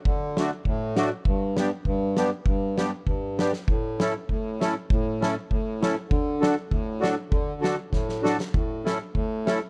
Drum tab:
SD |--o---o-|--o---o-|--o---oo|--o---o-|
BD |o---o---|o---o---|o---o---|o---o---|

SD |--o---o-|--o---o-|--o-oooo|--o---o-|
BD |o---o---|o---o---|o---o---|o---o---|